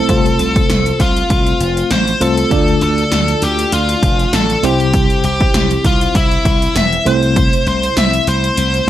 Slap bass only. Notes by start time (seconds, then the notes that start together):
0.09 C2
0.39 C2
0.70 C2
1.00 C2
1.30 C2
1.60 F1
1.91 A1
2.21 C2
2.51 D2
2.81 D2
3.12 D2
3.42 D2
3.72 D2
4.03 F1
4.33 A1
4.63 C2
5.24 C2
5.54 C2
5.84 C2
6.15 C2
6.45 C2
6.76 E1
7.06 C2
7.67 C2
7.97 C2
8.27 C2
8.58 C2